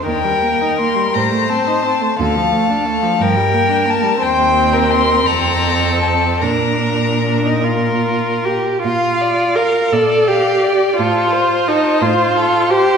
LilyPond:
<<
  \new Staff \with { instrumentName = "Violin" } { \time 6/8 \key bes \major \tempo 4. = 57 g''4 c'''8 bes''8 a''4 | f''4 f''8 g''4 a''8 | g''4 c'''8 bes''4 a''8 | bes''4. r4. |
r4. d''4. | c''2. | }
  \new Staff \with { instrumentName = "Violin" } { \time 6/8 \key bes \major bes'4. c''4. | a'4. bes'4. | c''8. bes'8. a'4. | bes'2~ bes'8. r16 |
f''8 d''8 f''8 d''8 f''8 d''8 | a'8 c''8 a'8 c''8 a'8 c''8 | }
  \new Staff \with { instrumentName = "Viola" } { \time 6/8 \key bes \major ees16 g16 bes16 ees'16 bes16 g16 g16 a16 c'16 ees'16 c'16 a16 | d16 f16 a16 d'16 a16 f16 f16 g16 bes16 d'16 bes16 g16 | c'4. c'4. | d'4 d'16 ees'16 f'4 g'8 |
f'4 bes'8 a'8 g'4 | f'4 ees'8 f'4 g'8 | }
  \new Staff \with { instrumentName = "Cello" } { \clef bass \time 6/8 \key bes \major ees,4. a,4. | d,4. g,4. | ees,4. f,4. | bes,2~ bes,8 r8 |
bes,4. bes,4. | a,4. a,4. | }
>>